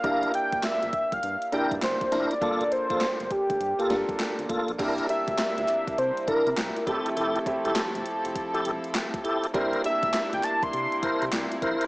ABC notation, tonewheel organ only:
X:1
M:4/4
L:1/16
Q:"Swing 16ths" 1/4=101
K:Cmix
V:1 name="Tonewheel organ"
[DEB]2 z8 [DEB] z3 [DEB] z | [B,FA] z2 [B,FA] z4 z [B,FA] z4 [B,FA] z | [DEB]2 z8 [DEB] z3 [EGA] z | [EGA] z2 [EGA] z4 z [EGA] z4 [EGA] z |
[EBc]2 z8 [EBc] z3 [EBc] z |]